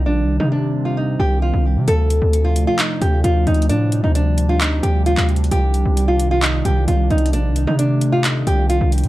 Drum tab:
HH |------------------------------------------------------------------------------------------------|x-----------x-----------x-----------x-----------x-----------x-----------x-----------x---x---x---|x-----------x-----------x-----------x-----------x-----------x-----------x-----------x---x---x---|x-----------x-----------x-----------x-----------x-----------x-----------x-----------x---x---x---|
CP |------------------------------------------------------------------------------------------------|------------------------------------------------x-----------------------------------------------|------------------------------------------------x-----------------------------x-----------------|------------------------------------------------x-----------------------------------------------|

HH |x-----------x-----------x-----------x-----------x-----------x-----------x-----------x--x--x-----|
CP |------------------------------------------------x-----------------------------------------------|